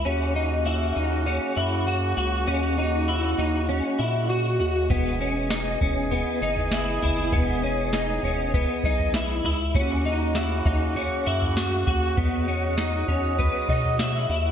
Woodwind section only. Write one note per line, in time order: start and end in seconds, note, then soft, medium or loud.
0.06 4.87 C#3 medium
0.06 4.86 A#3 medium
0.06 2.46 C#4 medium
0.06 4.86 F#4 medium
2.48 9.59 D#5 medium
4.90 9.59 E3 medium
4.90 9.59 B3 medium
4.90 9.59 G#4 medium
9.76 12.15 C#3 medium
9.76 12.15 A#3 medium
9.76 12.15 C#4 medium
9.76 14.52 F#4 medium
12.18 14.52 F#3 medium
12.18 14.52 G#4 medium
12.18 14.52 D#5 medium